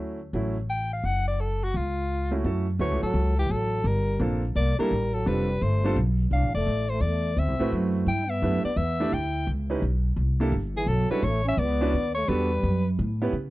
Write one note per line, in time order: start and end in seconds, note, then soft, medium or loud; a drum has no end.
0.00 0.30 D2 medium
0.00 0.18 F#3 soft
0.00 0.18 A3 soft
0.00 0.18 C#4 soft
0.00 0.18 E4 medium
0.33 1.00 A1 medium
0.33 0.55 F#3 medium
0.33 0.55 A3 soft
0.33 0.55 C#4 soft
0.33 0.55 E4 medium
0.70 0.91 G5 medium
0.93 1.07 F5 medium
1.04 1.71 F#1 medium
1.04 1.27 F#5 medium
1.28 1.42 D5 medium
1.40 1.65 A4 medium
1.64 1.77 F#4 medium
1.74 2.41 C#2 medium
1.74 2.39 F4 medium
2.31 2.43 A3 medium
2.31 2.43 C#4 soft
2.31 2.43 E4 soft
2.31 2.43 F#4 medium
2.44 2.79 F#2 medium
2.44 2.65 A3 soft
2.44 2.66 C#4 soft
2.44 2.65 E4 soft
2.44 2.66 F#4 soft
2.44 2.66 A4 medium
2.79 2.91 D2 medium
2.79 3.00 A3 medium
2.79 3.02 A3 medium
2.79 3.00 C#4 medium
2.79 3.01 E4 medium
2.79 3.01 F#4 medium
2.79 3.01 B4 medium
2.79 3.02 C#5 medium
2.91 3.02 C#2 soft
3.03 3.13 A1 medium
3.03 3.36 F#3 medium
3.03 3.36 A4 medium
3.14 3.48 C#2 medium
3.38 3.51 E3 medium
3.38 3.53 G4 medium
3.49 3.84 A1 medium
3.49 3.87 F#3 medium
3.49 3.88 A4 medium
3.84 4.19 G1 medium
3.84 4.20 G3 medium
3.84 4.21 A#4 medium
4.20 4.54 A#1 medium
4.20 4.41 A#3 medium
4.20 4.41 C4 medium
4.20 4.41 D4 medium
4.20 4.41 F4 medium
4.20 4.42 A4 medium
4.55 4.77 C2 medium
4.55 4.77 A#3 medium
4.55 4.77 D5 medium
4.79 5.14 G3 medium
4.79 4.89 G3 medium
4.79 4.90 A#3 medium
4.79 4.90 D4 medium
4.79 4.90 E4 medium
4.79 4.90 A4 medium
4.79 5.15 A#4 medium
4.79 muted upright bass stroke soft
4.91 5.25 A1 medium
5.13 5.27 F#3 medium
5.13 5.29 A4 medium
5.26 5.60 F1 medium
5.26 5.63 G3 medium
5.26 5.46 G3 medium
5.26 5.47 C4 soft
5.26 5.47 D4 medium
5.26 5.47 F4 soft
5.26 5.47 A4 medium
5.26 5.64 B4 medium
5.61 5.95 G1 medium
5.61 5.96 A3 medium
5.61 5.97 C5 medium
5.84 5.95 G3 medium
5.84 5.95 C4 medium
5.84 5.95 D4 medium
5.84 5.95 F4 medium
5.84 5.96 A4 medium
5.96 6.30 B1 medium
6.31 6.43 C2 medium
6.31 6.53 D4 medium
6.31 6.53 F5 medium
6.43 6.54 A1 medium
6.54 6.65 F1 medium
6.54 6.90 A3 medium
6.54 6.91 D5 medium
6.67 7.00 A1 medium
6.90 7.03 A3 medium
6.90 7.03 C5 medium
7.01 7.35 E2 medium
7.01 7.38 A3 medium
7.01 7.40 D5 medium
7.37 7.48 D2 medium
7.37 7.72 C4 medium
7.37 7.73 E5 medium
7.48 7.59 C2 medium
7.59 7.71 A1 medium
7.59 8.04 A3 medium
7.59 8.05 C4 medium
7.59 8.05 E4 medium
7.59 8.05 F#4 medium
7.59 8.05 B4 medium
7.72 8.06 F#2 medium
8.06 8.41 G2 medium
8.06 8.29 E4 medium
8.06 8.31 G5 medium
8.27 8.62 B3 medium
8.27 8.64 E5 medium
8.42 8.63 F#2 medium
8.42 8.63 A3 medium
8.42 8.63 D4 medium
8.42 8.63 E4 medium
8.42 8.63 G4 soft
8.42 8.63 B4 medium
8.63 8.75 B3 medium
8.63 8.78 D5 medium
8.63 muted upright bass stroke soft
8.75 9.11 E2 medium
8.75 9.12 B3 medium
8.75 9.15 E5 medium
9.00 9.11 A3 medium
9.00 9.11 D4 medium
9.00 9.11 E4 medium
9.00 9.12 G4 medium
9.00 9.12 D5 medium
9.10 9.46 D2 medium
9.10 9.46 E4 medium
9.10 9.48 G5 medium
9.47 9.81 C#2 medium
9.70 9.81 C#4 medium
9.70 9.81 D#4 medium
9.70 9.81 E4 medium
9.70 9.81 G4 medium
9.70 9.81 B4 medium
9.82 10.16 B1 medium
10.16 10.51 C2 medium
10.40 10.51 A#3 medium
10.40 10.52 D4 medium
10.40 10.51 E4 medium
10.40 10.52 G4 medium
10.40 10.52 A4 medium
10.52 10.86 G1 medium
10.76 10.90 E3 medium
10.76 10.89 G#4 medium
10.86 11.08 B1 medium
10.86 11.11 F#3 medium
10.86 11.10 A4 medium
11.10 11.25 G3 medium
11.10 11.21 C#4 medium
11.10 11.22 D4 medium
11.10 11.22 E4 medium
11.10 11.22 F#4 medium
11.10 11.22 A4 medium
11.10 11.26 B4 medium
11.10 muted upright bass stroke soft
11.22 11.57 A1 medium
11.22 11.44 A3 medium
11.22 11.47 C#5 medium
11.45 11.60 C#4 medium
11.45 11.60 E5 medium
11.57 11.92 C#2 medium
11.57 12.15 B3 medium
11.57 12.14 D5 medium
11.81 11.92 C#4 medium
11.81 11.92 D4 medium
11.81 11.92 E4 medium
11.81 11.92 F#4 medium
11.81 11.93 B4 medium
11.93 12.27 D#2 medium
12.15 12.29 A3 medium
12.15 12.30 C#5 medium
12.28 12.62 E2 medium
12.28 12.86 G3 medium
12.28 12.49 B3 medium
12.28 12.49 D4 medium
12.28 12.49 F#4 medium
12.28 12.50 G4 medium
12.28 12.50 A4 medium
12.28 12.87 B4 medium
12.63 12.97 F#2 medium
12.99 13.32 A2 medium
13.22 13.32 B3 medium
13.22 13.32 C#4 medium
13.22 13.32 E4 medium
13.22 13.33 G4 medium
13.22 13.33 B4 medium
13.33 13.50 C#3 medium